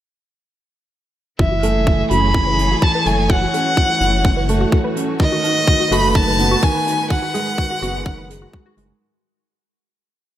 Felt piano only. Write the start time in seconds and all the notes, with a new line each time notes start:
1.39 E3
1.63 A3
1.87 E3
2.10 C#4
2.34 E3
2.59 E4
2.82 E3
3.06 A3
3.29 E3
3.53 C#4
3.77 E3
4.01 E4
4.25 E3
4.49 A3
4.73 E3
4.97 C#4
5.21 D#3
5.44 D#4
5.68 D#3
5.92 A3
6.16 D#3
6.39 B3
6.63 D#3
6.87 D#4
7.11 D#3
7.35 G#3
7.59 D#3
7.82 B3
8.06 D#3
8.29 G#4
8.53 G#3
8.77 G#3